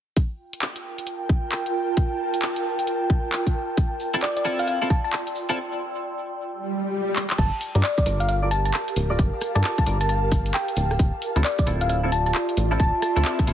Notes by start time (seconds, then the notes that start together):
0.16 F4 G5, kick, closed hi-hat
0.34 G5
0.51 A#4 A5, closed hi-hat
0.62 clap
0.76 closed hi-hat
0.98 closed hi-hat
1.07 closed hi-hat
1.29 kick
1.52 clap
1.66 closed hi-hat
1.97 kick, closed hi-hat
2.34 closed hi-hat
2.42 clap
2.56 closed hi-hat
2.79 closed hi-hat
2.87 closed hi-hat
3.10 kick
3.32 clap
3.47 kick, closed hi-hat
3.77 kick, closed hi-hat, cabasa
3.98 C6, cabasa
4.11 E4 A4 D5, closed hi-hat, cabasa
4.15 C4 F4
4.22 D5, clap, cabasa
4.37 D5, closed hi-hat
4.45 C4 E4 F4 A4, cabasa
4.59 F5, closed hi-hat, cabasa
4.68 F5, closed hi-hat, cabasa
4.82 C4 E4 F4 A4
4.90 A5, kick, cabasa
5.04 A5, cabasa
5.13 clap, cabasa
5.27 closed hi-hat, cabasa
5.35 cabasa
5.49 C4 E4 F4 A4, cabasa
6.48 swell
7.16 clap
7.30 clap
7.38 G1 G4 A5, kick, closed hi-hat, crash, cabasa
7.58 A#4, open hi-hat, cabasa
7.75 G2 F4 A4 A#4 D5, closed hi-hat, cabasa
7.83 D5, clap, cabasa
7.98 D5, kick, closed hi-hat, cabasa
8.06 G1 F4 A4 A#4 D5 F5, open hi-hat, cabasa
8.19 F5 A5, closed hi-hat, cabasa
8.28 F5, closed hi-hat, cabasa
8.42 F4 A4 A#4 D5
8.51 A5, open hi-hat, cabasa
8.65 A5, closed hi-hat, cabasa
8.73 clap, cabasa
8.88 closed hi-hat
8.96 D1, open hi-hat, cabasa
9.10 F4 A4 A#4 D5, cabasa
9.19 G1, kick, closed hi-hat, cabasa
9.41 cross-stick, open hi-hat, cabasa
9.55 G2 F4 A4 A#4 D5 A5, cross-stick, closed hi-hat, cabasa
9.64 A5, clap, cabasa
9.78 A5, kick, closed hi-hat, cabasa
9.86 G1 F4 A4 A#4 D5, open hi-hat, cabasa
10.01 A5, closed hi-hat, cabasa
10.09 A5, closed hi-hat, cabasa
10.32 kick, open hi-hat, cabasa
10.46 closed hi-hat, cabasa
10.54 G5, clap, cabasa
10.68 closed hi-hat
10.76 D1, open hi-hat, cabasa
10.91 cross-stick, cabasa
10.99 D1 F4, kick, closed hi-hat, cabasa
11.22 D5, open hi-hat, cabasa
11.36 D2 C4 E4 F4 A4, closed hi-hat, cabasa
11.44 D5, clap, cabasa
11.58 D5, kick, closed hi-hat, cabasa
11.63 E4 C6, cabasa
11.67 D1 C4 F4 A4 E5, open hi-hat
11.81 F5, closed hi-hat, cabasa
11.89 F5, closed hi-hat, cabasa
12.03 C4 E4 F4 A4
12.12 A5, open hi-hat, cabasa
12.26 A5, closed hi-hat, cabasa
12.35 clap, cabasa
12.49 closed hi-hat
12.57 A1, open hi-hat, cabasa
12.71 C4 E4 F4 A4, cabasa
12.80 D1 A5, kick, closed hi-hat, cabasa
13.02 A5, cross-stick, open hi-hat, cabasa
13.16 D2 C4 E4 F4 A4, cross-stick, closed hi-hat, cabasa
13.25 clap, cabasa
13.39 kick, closed hi-hat, cabasa
13.47 D1 C4 E4 F4 A4, open hi-hat, cabasa